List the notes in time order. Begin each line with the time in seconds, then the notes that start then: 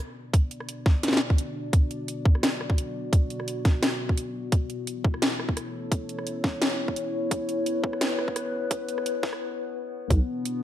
Already playing: B3 D4 F#4 D5
0.34 kick, closed hi-hat
0.51 closed hi-hat
0.60 cross-stick
0.69 closed hi-hat
0.86 kick, snare
1.03 snare, closed hi-hat
1.08 snare
1.13 snare
1.17 snare
1.30 kick
1.38 closed hi-hat
1.73 kick, closed hi-hat
1.91 closed hi-hat
2.08 closed hi-hat
2.25 kick
2.35 cross-stick
2.43 snare, closed hi-hat
2.61 cross-stick
2.70 kick
2.78 closed hi-hat
3.13 kick, closed hi-hat
3.30 closed hi-hat
3.40 cross-stick
3.48 closed hi-hat
3.65 kick, snare, closed hi-hat
3.83 snare, closed hi-hat
4.09 kick
4.17 closed hi-hat
4.52 kick, closed hi-hat
4.64 E4
4.70 closed hi-hat
4.87 closed hi-hat
5.04 kick
5.11 A4, cross-stick
5.22 snare, closed hi-hat
5.40 C#5, cross-stick
5.49 kick
5.57 cross-stick, closed hi-hat
5.92 kick, closed hi-hat
6.09 closed hi-hat
6.19 cross-stick
6.27 closed hi-hat
6.44 kick, snare
6.62 snare, closed hi-hat
6.88 kick
6.96 closed hi-hat
7.31 B4, kick, closed hi-hat
7.49 closed hi-hat
7.66 closed hi-hat
7.84 kick
7.93 cross-stick
8.01 snare, closed hi-hat
8.19 cross-stick
8.28 kick
8.36 cross-stick, closed hi-hat
8.71 kick, closed hi-hat
8.89 closed hi-hat
8.98 cross-stick
9.06 closed hi-hat
9.23 kick, snare
9.33 cross-stick
10.10 B1 B3, kick, closed hi-hat
10.29 D4
10.43 F#4, closed hi-hat